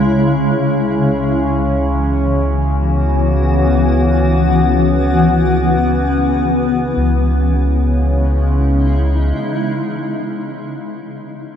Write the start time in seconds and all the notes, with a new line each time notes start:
Already playing: C#2 C#3 G#3 C#4 E4
0.56 C#2 E3
1.38 B3 F#4
2.29 F#5
6.97 C#2 C#3 C#4
7.10 G#3
7.21 D#4
7.33 E4